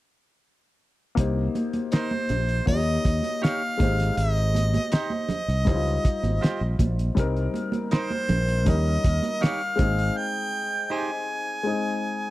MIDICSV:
0, 0, Header, 1, 7, 480
1, 0, Start_track
1, 0, Key_signature, -4, "major"
1, 0, Tempo, 749064
1, 752, Time_signature, 4, 2, 24, 8
1, 7883, End_track
2, 0, Start_track
2, 0, Title_t, "Harmonica"
2, 0, Program_c, 0, 22
2, 1242, Note_on_c, 0, 72, 76
2, 1693, Note_off_c, 0, 72, 0
2, 1717, Note_on_c, 0, 75, 98
2, 2170, Note_off_c, 0, 75, 0
2, 2201, Note_on_c, 0, 77, 84
2, 2676, Note_on_c, 0, 75, 83
2, 2686, Note_off_c, 0, 77, 0
2, 3156, Note_off_c, 0, 75, 0
2, 3161, Note_on_c, 0, 75, 78
2, 4332, Note_off_c, 0, 75, 0
2, 5084, Note_on_c, 0, 72, 73
2, 5564, Note_on_c, 0, 75, 89
2, 5574, Note_off_c, 0, 72, 0
2, 6043, Note_on_c, 0, 77, 83
2, 6052, Note_off_c, 0, 75, 0
2, 6518, Note_on_c, 0, 79, 84
2, 6527, Note_off_c, 0, 77, 0
2, 7002, Note_on_c, 0, 80, 80
2, 7011, Note_off_c, 0, 79, 0
2, 7883, Note_off_c, 0, 80, 0
2, 7883, End_track
3, 0, Start_track
3, 0, Title_t, "Clean electric guitar"
3, 0, Program_c, 1, 27
3, 1234, Note_on_c, 1, 63, 64
3, 1238, Note_on_c, 1, 70, 67
3, 1241, Note_on_c, 1, 72, 73
3, 1356, Note_off_c, 1, 63, 0
3, 1358, Note_off_c, 1, 70, 0
3, 1359, Note_off_c, 1, 72, 0
3, 2190, Note_on_c, 1, 63, 59
3, 2191, Note_on_c, 1, 67, 65
3, 2197, Note_on_c, 1, 73, 68
3, 2315, Note_off_c, 1, 63, 0
3, 2315, Note_off_c, 1, 67, 0
3, 2318, Note_off_c, 1, 73, 0
3, 3152, Note_on_c, 1, 63, 57
3, 3157, Note_on_c, 1, 67, 70
3, 3159, Note_on_c, 1, 72, 66
3, 3276, Note_off_c, 1, 63, 0
3, 3279, Note_off_c, 1, 67, 0
3, 3279, Note_off_c, 1, 72, 0
3, 4109, Note_on_c, 1, 65, 55
3, 4115, Note_on_c, 1, 67, 62
3, 4117, Note_on_c, 1, 72, 66
3, 4235, Note_off_c, 1, 65, 0
3, 4238, Note_off_c, 1, 67, 0
3, 4239, Note_off_c, 1, 72, 0
3, 5071, Note_on_c, 1, 63, 69
3, 5076, Note_on_c, 1, 70, 67
3, 5080, Note_on_c, 1, 72, 64
3, 5196, Note_off_c, 1, 63, 0
3, 5198, Note_off_c, 1, 70, 0
3, 5200, Note_off_c, 1, 72, 0
3, 6031, Note_on_c, 1, 63, 60
3, 6034, Note_on_c, 1, 67, 69
3, 6037, Note_on_c, 1, 73, 67
3, 6155, Note_off_c, 1, 63, 0
3, 6157, Note_off_c, 1, 67, 0
3, 6158, Note_off_c, 1, 73, 0
3, 6985, Note_on_c, 1, 63, 72
3, 6991, Note_on_c, 1, 67, 71
3, 6994, Note_on_c, 1, 72, 73
3, 7111, Note_off_c, 1, 63, 0
3, 7114, Note_off_c, 1, 67, 0
3, 7116, Note_off_c, 1, 72, 0
3, 7883, End_track
4, 0, Start_track
4, 0, Title_t, "Grand piano"
4, 0, Program_c, 2, 0
4, 737, Note_on_c, 2, 58, 68
4, 745, Note_on_c, 2, 63, 61
4, 756, Note_on_c, 2, 67, 54
4, 765, Note_on_c, 2, 72, 66
4, 868, Control_c, 2, 64, 127
4, 1687, Note_off_c, 2, 58, 0
4, 1691, Note_off_c, 2, 63, 0
4, 1696, Note_off_c, 2, 67, 0
4, 1701, Note_off_c, 2, 72, 0
4, 1703, Note_on_c, 2, 58, 51
4, 1712, Note_on_c, 2, 63, 47
4, 1714, Note_on_c, 2, 65, 43
4, 1720, Note_on_c, 2, 73, 51
4, 1721, Control_c, 2, 64, 0
4, 1755, Note_off_c, 2, 65, 0
4, 1758, Note_on_c, 2, 67, 50
4, 1852, Control_c, 2, 64, 127
4, 2419, Note_off_c, 2, 63, 0
4, 2419, Note_on_c, 2, 56, 56
4, 2429, Note_off_c, 2, 58, 0
4, 2429, Note_off_c, 2, 67, 0
4, 2429, Note_on_c, 2, 63, 56
4, 2438, Note_off_c, 2, 73, 0
4, 2439, Note_on_c, 2, 67, 51
4, 2442, Control_c, 2, 64, 0
4, 2448, Note_on_c, 2, 72, 60
4, 2568, Control_c, 2, 64, 127
4, 3603, Note_off_c, 2, 56, 0
4, 3608, Note_off_c, 2, 63, 0
4, 3613, Note_off_c, 2, 67, 0
4, 3618, Note_off_c, 2, 72, 0
4, 3620, Note_on_c, 2, 55, 54
4, 3630, Note_on_c, 2, 63, 50
4, 3638, Note_on_c, 2, 64, 40
4, 3643, Control_c, 2, 64, 0
4, 3647, Note_on_c, 2, 72, 57
4, 3678, Note_off_c, 2, 64, 0
4, 3682, Note_on_c, 2, 65, 52
4, 3767, Control_c, 2, 64, 127
4, 4568, Note_off_c, 2, 55, 0
4, 4573, Note_off_c, 2, 63, 0
4, 4581, Note_on_c, 2, 55, 65
4, 4582, Note_off_c, 2, 72, 0
4, 4590, Note_on_c, 2, 60, 67
4, 4600, Note_off_c, 2, 65, 0
4, 4600, Note_on_c, 2, 63, 58
4, 4604, Control_c, 2, 64, 0
4, 4610, Note_on_c, 2, 70, 76
4, 4717, Control_c, 2, 64, 127
4, 5528, Note_off_c, 2, 55, 0
4, 5533, Note_off_c, 2, 60, 0
4, 5538, Note_off_c, 2, 63, 0
4, 5543, Note_off_c, 2, 70, 0
4, 5546, Note_on_c, 2, 55, 50
4, 5551, Note_on_c, 2, 61, 47
4, 5555, Note_on_c, 2, 63, 49
4, 5559, Note_on_c, 2, 70, 62
4, 5561, Control_c, 2, 64, 0
4, 5660, Control_c, 2, 64, 127
4, 6253, Note_on_c, 2, 56, 56
4, 6261, Note_off_c, 2, 63, 0
4, 6263, Note_on_c, 2, 60, 54
4, 6269, Note_off_c, 2, 55, 0
4, 6271, Note_on_c, 2, 63, 56
4, 6272, Note_off_c, 2, 61, 0
4, 6276, Note_off_c, 2, 70, 0
4, 6281, Control_c, 2, 64, 0
4, 6282, Note_on_c, 2, 68, 68
4, 6384, Control_c, 2, 64, 127
4, 7437, Note_off_c, 2, 56, 0
4, 7443, Note_off_c, 2, 60, 0
4, 7446, Note_off_c, 2, 63, 0
4, 7452, Note_off_c, 2, 68, 0
4, 7455, Note_on_c, 2, 56, 52
4, 7464, Note_on_c, 2, 60, 47
4, 7475, Note_on_c, 2, 63, 51
4, 7481, Control_c, 2, 64, 0
4, 7482, Note_on_c, 2, 68, 55
4, 7599, Control_c, 2, 64, 127
4, 7883, Note_off_c, 2, 56, 0
4, 7883, Note_off_c, 2, 60, 0
4, 7883, Note_off_c, 2, 63, 0
4, 7883, Note_off_c, 2, 68, 0
4, 7883, End_track
5, 0, Start_track
5, 0, Title_t, "Fingered electric bass"
5, 0, Program_c, 3, 33
5, 755, Note_on_c, 3, 36, 77
5, 945, Note_off_c, 3, 36, 0
5, 1473, Note_on_c, 3, 34, 70
5, 1664, Note_off_c, 3, 34, 0
5, 1712, Note_on_c, 3, 39, 90
5, 1904, Note_off_c, 3, 39, 0
5, 1957, Note_on_c, 3, 39, 70
5, 2051, Note_off_c, 3, 39, 0
5, 2436, Note_on_c, 3, 32, 90
5, 2626, Note_off_c, 3, 32, 0
5, 2675, Note_on_c, 3, 32, 84
5, 3056, Note_off_c, 3, 32, 0
5, 3514, Note_on_c, 3, 36, 76
5, 3635, Note_off_c, 3, 36, 0
5, 3635, Note_on_c, 3, 37, 97
5, 3826, Note_off_c, 3, 37, 0
5, 3994, Note_on_c, 3, 32, 69
5, 4090, Note_off_c, 3, 32, 0
5, 4236, Note_on_c, 3, 34, 72
5, 4331, Note_off_c, 3, 34, 0
5, 4353, Note_on_c, 3, 34, 77
5, 4545, Note_off_c, 3, 34, 0
5, 4596, Note_on_c, 3, 36, 77
5, 4786, Note_off_c, 3, 36, 0
5, 5317, Note_on_c, 3, 34, 85
5, 5555, Note_off_c, 3, 34, 0
5, 5555, Note_on_c, 3, 39, 89
5, 5745, Note_off_c, 3, 39, 0
5, 5796, Note_on_c, 3, 39, 70
5, 5891, Note_off_c, 3, 39, 0
5, 6275, Note_on_c, 3, 32, 77
5, 6465, Note_off_c, 3, 32, 0
5, 7883, End_track
6, 0, Start_track
6, 0, Title_t, "Muted fingered electric bass strokes"
6, 3393, Note_on_c, 9, 29, 39
6, 3457, Note_off_c, 9, 29, 0
6, 7883, End_track
7, 0, Start_track
7, 0, Title_t, "Drums"
7, 752, Note_on_c, 9, 36, 97
7, 754, Note_on_c, 9, 42, 89
7, 816, Note_off_c, 9, 36, 0
7, 818, Note_off_c, 9, 42, 0
7, 995, Note_on_c, 9, 63, 59
7, 997, Note_on_c, 9, 42, 54
7, 1059, Note_off_c, 9, 63, 0
7, 1061, Note_off_c, 9, 42, 0
7, 1111, Note_on_c, 9, 42, 46
7, 1112, Note_on_c, 9, 63, 56
7, 1175, Note_off_c, 9, 42, 0
7, 1176, Note_off_c, 9, 63, 0
7, 1228, Note_on_c, 9, 42, 73
7, 1240, Note_on_c, 9, 38, 89
7, 1292, Note_off_c, 9, 42, 0
7, 1304, Note_off_c, 9, 38, 0
7, 1352, Note_on_c, 9, 63, 63
7, 1416, Note_off_c, 9, 63, 0
7, 1468, Note_on_c, 9, 42, 61
7, 1473, Note_on_c, 9, 64, 53
7, 1532, Note_off_c, 9, 42, 0
7, 1537, Note_off_c, 9, 64, 0
7, 1593, Note_on_c, 9, 42, 48
7, 1657, Note_off_c, 9, 42, 0
7, 1712, Note_on_c, 9, 36, 76
7, 1712, Note_on_c, 9, 42, 64
7, 1713, Note_on_c, 9, 64, 65
7, 1776, Note_off_c, 9, 36, 0
7, 1776, Note_off_c, 9, 42, 0
7, 1778, Note_off_c, 9, 64, 0
7, 1954, Note_on_c, 9, 36, 81
7, 1955, Note_on_c, 9, 42, 73
7, 1956, Note_on_c, 9, 62, 22
7, 2019, Note_off_c, 9, 36, 0
7, 2019, Note_off_c, 9, 42, 0
7, 2021, Note_off_c, 9, 62, 0
7, 2069, Note_on_c, 9, 63, 59
7, 2077, Note_on_c, 9, 42, 45
7, 2133, Note_off_c, 9, 63, 0
7, 2141, Note_off_c, 9, 42, 0
7, 2191, Note_on_c, 9, 62, 26
7, 2202, Note_on_c, 9, 42, 69
7, 2208, Note_on_c, 9, 38, 98
7, 2255, Note_off_c, 9, 62, 0
7, 2266, Note_off_c, 9, 42, 0
7, 2272, Note_off_c, 9, 38, 0
7, 2435, Note_on_c, 9, 36, 95
7, 2436, Note_on_c, 9, 42, 64
7, 2436, Note_on_c, 9, 62, 28
7, 2436, Note_on_c, 9, 63, 64
7, 2499, Note_off_c, 9, 36, 0
7, 2500, Note_off_c, 9, 42, 0
7, 2500, Note_off_c, 9, 62, 0
7, 2500, Note_off_c, 9, 63, 0
7, 2561, Note_on_c, 9, 42, 52
7, 2567, Note_on_c, 9, 38, 31
7, 2625, Note_off_c, 9, 42, 0
7, 2632, Note_off_c, 9, 38, 0
7, 2674, Note_on_c, 9, 62, 30
7, 2675, Note_on_c, 9, 42, 81
7, 2738, Note_off_c, 9, 62, 0
7, 2739, Note_off_c, 9, 42, 0
7, 2797, Note_on_c, 9, 42, 25
7, 2861, Note_off_c, 9, 42, 0
7, 2914, Note_on_c, 9, 62, 25
7, 2914, Note_on_c, 9, 63, 60
7, 2923, Note_on_c, 9, 42, 58
7, 2978, Note_off_c, 9, 62, 0
7, 2978, Note_off_c, 9, 63, 0
7, 2987, Note_off_c, 9, 42, 0
7, 3035, Note_on_c, 9, 63, 67
7, 3038, Note_on_c, 9, 42, 43
7, 3099, Note_off_c, 9, 63, 0
7, 3102, Note_off_c, 9, 42, 0
7, 3151, Note_on_c, 9, 42, 70
7, 3162, Note_on_c, 9, 38, 84
7, 3215, Note_off_c, 9, 42, 0
7, 3226, Note_off_c, 9, 38, 0
7, 3269, Note_on_c, 9, 63, 59
7, 3333, Note_off_c, 9, 63, 0
7, 3387, Note_on_c, 9, 62, 30
7, 3387, Note_on_c, 9, 64, 58
7, 3394, Note_on_c, 9, 42, 60
7, 3452, Note_off_c, 9, 62, 0
7, 3452, Note_off_c, 9, 64, 0
7, 3458, Note_off_c, 9, 42, 0
7, 3521, Note_on_c, 9, 42, 48
7, 3585, Note_off_c, 9, 42, 0
7, 3632, Note_on_c, 9, 64, 62
7, 3634, Note_on_c, 9, 36, 86
7, 3636, Note_on_c, 9, 42, 65
7, 3696, Note_off_c, 9, 64, 0
7, 3698, Note_off_c, 9, 36, 0
7, 3700, Note_off_c, 9, 42, 0
7, 3761, Note_on_c, 9, 42, 30
7, 3826, Note_off_c, 9, 42, 0
7, 3876, Note_on_c, 9, 36, 77
7, 3876, Note_on_c, 9, 42, 74
7, 3876, Note_on_c, 9, 62, 22
7, 3940, Note_off_c, 9, 36, 0
7, 3940, Note_off_c, 9, 42, 0
7, 3940, Note_off_c, 9, 62, 0
7, 3994, Note_on_c, 9, 63, 57
7, 4000, Note_on_c, 9, 42, 44
7, 4058, Note_off_c, 9, 63, 0
7, 4064, Note_off_c, 9, 42, 0
7, 4112, Note_on_c, 9, 62, 25
7, 4123, Note_on_c, 9, 42, 70
7, 4129, Note_on_c, 9, 38, 93
7, 4176, Note_off_c, 9, 62, 0
7, 4187, Note_off_c, 9, 42, 0
7, 4193, Note_off_c, 9, 38, 0
7, 4352, Note_on_c, 9, 36, 77
7, 4354, Note_on_c, 9, 42, 62
7, 4355, Note_on_c, 9, 62, 28
7, 4355, Note_on_c, 9, 63, 61
7, 4416, Note_off_c, 9, 36, 0
7, 4418, Note_off_c, 9, 42, 0
7, 4419, Note_off_c, 9, 62, 0
7, 4419, Note_off_c, 9, 63, 0
7, 4480, Note_on_c, 9, 42, 48
7, 4544, Note_off_c, 9, 42, 0
7, 4592, Note_on_c, 9, 62, 32
7, 4595, Note_on_c, 9, 36, 101
7, 4597, Note_on_c, 9, 42, 86
7, 4656, Note_off_c, 9, 62, 0
7, 4659, Note_off_c, 9, 36, 0
7, 4661, Note_off_c, 9, 42, 0
7, 4720, Note_on_c, 9, 42, 29
7, 4784, Note_off_c, 9, 42, 0
7, 4831, Note_on_c, 9, 63, 55
7, 4841, Note_on_c, 9, 42, 55
7, 4895, Note_off_c, 9, 63, 0
7, 4905, Note_off_c, 9, 42, 0
7, 4947, Note_on_c, 9, 63, 60
7, 4956, Note_on_c, 9, 42, 43
7, 5011, Note_off_c, 9, 63, 0
7, 5020, Note_off_c, 9, 42, 0
7, 5069, Note_on_c, 9, 62, 24
7, 5070, Note_on_c, 9, 42, 68
7, 5082, Note_on_c, 9, 38, 82
7, 5133, Note_off_c, 9, 62, 0
7, 5134, Note_off_c, 9, 42, 0
7, 5146, Note_off_c, 9, 38, 0
7, 5194, Note_on_c, 9, 63, 60
7, 5196, Note_on_c, 9, 42, 31
7, 5258, Note_off_c, 9, 63, 0
7, 5260, Note_off_c, 9, 42, 0
7, 5312, Note_on_c, 9, 42, 63
7, 5312, Note_on_c, 9, 64, 62
7, 5376, Note_off_c, 9, 64, 0
7, 5377, Note_off_c, 9, 42, 0
7, 5438, Note_on_c, 9, 42, 50
7, 5502, Note_off_c, 9, 42, 0
7, 5550, Note_on_c, 9, 42, 68
7, 5553, Note_on_c, 9, 36, 71
7, 5553, Note_on_c, 9, 62, 28
7, 5553, Note_on_c, 9, 64, 60
7, 5615, Note_off_c, 9, 42, 0
7, 5617, Note_off_c, 9, 36, 0
7, 5617, Note_off_c, 9, 62, 0
7, 5617, Note_off_c, 9, 64, 0
7, 5675, Note_on_c, 9, 42, 27
7, 5739, Note_off_c, 9, 42, 0
7, 5795, Note_on_c, 9, 36, 83
7, 5795, Note_on_c, 9, 42, 70
7, 5859, Note_off_c, 9, 36, 0
7, 5859, Note_off_c, 9, 42, 0
7, 5912, Note_on_c, 9, 63, 57
7, 5918, Note_on_c, 9, 42, 45
7, 5976, Note_off_c, 9, 63, 0
7, 5982, Note_off_c, 9, 42, 0
7, 6033, Note_on_c, 9, 62, 27
7, 6041, Note_on_c, 9, 42, 71
7, 6047, Note_on_c, 9, 38, 94
7, 6097, Note_off_c, 9, 62, 0
7, 6105, Note_off_c, 9, 42, 0
7, 6111, Note_off_c, 9, 38, 0
7, 6155, Note_on_c, 9, 42, 28
7, 6219, Note_off_c, 9, 42, 0
7, 6273, Note_on_c, 9, 42, 66
7, 6273, Note_on_c, 9, 62, 26
7, 6273, Note_on_c, 9, 63, 63
7, 6274, Note_on_c, 9, 36, 100
7, 6337, Note_off_c, 9, 42, 0
7, 6337, Note_off_c, 9, 62, 0
7, 6337, Note_off_c, 9, 63, 0
7, 6338, Note_off_c, 9, 36, 0
7, 6399, Note_on_c, 9, 42, 48
7, 6463, Note_off_c, 9, 42, 0
7, 7883, End_track
0, 0, End_of_file